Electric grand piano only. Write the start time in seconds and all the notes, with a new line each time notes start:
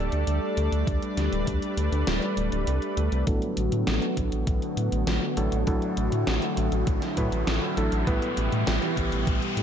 3.27 A2 F#3 B3 D4 A4
5.37 A2 F#3 B3 D4 A4
5.67 A2 F#3 D4 E4 A4
7.17 A2 F#3 D4 E4 B4
7.77 F#3 D4 E4 A4
8.07 A2 G3 B3 E4 B4